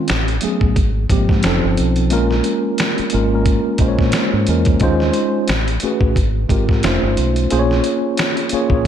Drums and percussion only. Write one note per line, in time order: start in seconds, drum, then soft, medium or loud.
0.08 finger snap medium
0.08 snare loud
0.08 closed hi-hat medium
0.28 closed hi-hat soft
0.41 closed hi-hat medium
0.61 kick medium
0.76 kick loud
0.76 closed hi-hat medium
1.10 kick loud
1.10 closed hi-hat medium
1.29 kick loud
1.29 snare soft
1.43 finger snap medium
1.43 snare loud
1.43 closed hi-hat medium
1.77 closed hi-hat medium
1.96 closed hi-hat soft
2.10 closed hi-hat medium
2.31 snare soft
2.44 closed hi-hat medium
2.78 finger snap medium
2.78 snare loud
2.78 closed hi-hat medium
2.98 closed hi-hat soft
3.10 closed hi-hat medium
3.46 kick loud
3.46 closed hi-hat medium
3.78 kick loud
3.78 closed hi-hat medium
3.99 kick loud
3.99 snare soft
4.12 finger snap medium
4.12 snare loud
4.12 closed hi-hat medium
4.47 closed hi-hat medium
4.65 kick loud
4.65 closed hi-hat soft
4.80 kick loud
4.80 closed hi-hat medium
5.00 snare soft
5.14 closed hi-hat medium
5.48 finger snap medium
5.48 snare loud
5.48 closed hi-hat medium
5.68 closed hi-hat medium
5.80 closed hi-hat medium
6.01 kick loud
6.16 kick medium
6.16 closed hi-hat medium
6.49 kick loud
6.49 closed hi-hat medium
6.69 kick medium
6.69 snare soft
6.83 finger snap medium
6.83 snare loud
6.83 closed hi-hat medium
7.17 closed hi-hat medium
7.36 closed hi-hat soft
7.50 closed hi-hat medium
7.71 snare soft
7.84 closed hi-hat medium
8.17 finger snap medium
8.17 snare loud
8.17 closed hi-hat medium
8.37 closed hi-hat medium
8.49 closed hi-hat medium
8.70 kick medium